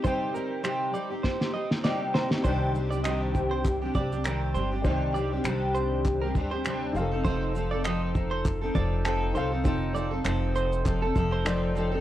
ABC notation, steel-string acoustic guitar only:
X:1
M:4/4
L:1/16
Q:"Swing 16ths" 1/4=100
K:Cdor
V:1 name="Steel-string acoustic guitar"
[C,G,CEG]2 [G,CEG]2 [C,G,CEG]2 [G,CEG] [CEG]2 [CEG] [G,CEG]2 [C,G,CEG]3 [CEG] | [C,E,G,CDG]2 [G,CDG] [G,CDG] [C,E,G,CDG]4- [C,E,G,CDG] [G,CDG] [G,CDG] [G,CDG] [C,E,G,CDG]2 [G,CDG] [G,CDG] | [C,E,G,CDG]2 [G,CDG] [G,CDG] [C,E,G,CDG]4- [C,E,G,CDG] [G,CDG] [G,CDG] [G,CDG] [C,G,CDG]2 [F,CEA] [CEA] | [F,CEA]2 [F,CEA] [CEA] [F,CEA]4- [F,CEA] [CEA] [F,CEA]2 [F,CEA]2 [F,CEA] [CEA] |
[F,CEA]2 [F,CEA] [CEA] [F,CEA]4 [F,CEA] [CEA] [F,CEA]2 [F,CEA]2 [F,CEA] [CEA] |]